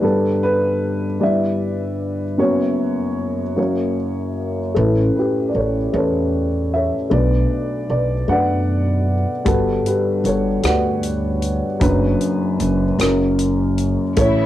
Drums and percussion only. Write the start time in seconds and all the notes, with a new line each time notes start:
9.46 kick, closed hi-hat
9.86 closed hi-hat
10.25 closed hi-hat
10.63 cross-stick, closed hi-hat
11.03 closed hi-hat
11.42 closed hi-hat
11.81 kick, closed hi-hat
12.21 closed hi-hat
12.60 closed hi-hat
12.99 cross-stick, closed hi-hat
13.39 closed hi-hat
13.78 closed hi-hat
14.16 kick, closed hi-hat